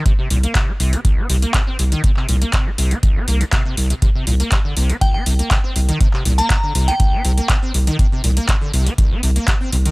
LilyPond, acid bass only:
\new Staff \with { instrumentName = "Acid bass" } { \clef bass \time 4/4 \key c \minor \tempo 4 = 121 c16 c16 bes,16 bes16 c16 bes16 c16 c'16 c,16 c'16 c16 bes16 c16 c'16 c16 ees16 | c16 c16 bes,16 bes16 c16 bes16 c16 c'16 c,16 c'16 bes16 c16 c16 c16 c,16 c16 | c16 c16 bes,16 bes16 c16 d16 c16 c'16 c,16 c'16 c16 bes16 c16 c'16 c16 ees16 | c16 c16 bes,16 bes16 c16 d16 c16 c'16 c,16 c'16 c16 bes16 c16 c'16 c16 ees16 |
c16 c16 bes,16 bes16 c16 d16 c16 c'16 c,16 c'16 c16 bes16 c16 c'16 c16 ees16 | }